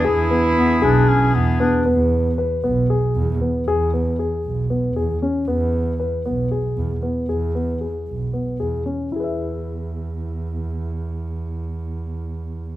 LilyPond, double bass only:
\new Staff \with { instrumentName = "Double bass" } { \clef bass \time 7/8 \key e \mixolydian \tempo 4 = 116 e,4. b,,4 e,4 | e,4. b,,4 e,8 r8 | e,4. b,,4 e,8 r8 | e,4. b,,4 e,8 r8 |
e,4. b,,4 e,8 r8 | e,2.~ e,8~ | e,2.~ e,8 | }